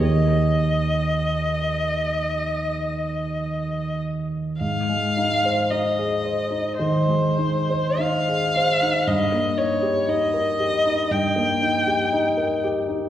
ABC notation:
X:1
M:4/4
L:1/16
Q:1/4=55
K:Ebmix
V:1 name="Violin"
e12- e2 z2 | f4 e4 c4 f4 | e2 d2 e4 g6 z2 |]
V:2 name="Grand piano"
[E,,B,GB]16 | A,, A, E c E A c E E, A, E c E A c E | G,, B, E G E B G E G,, B, E G E B G E |]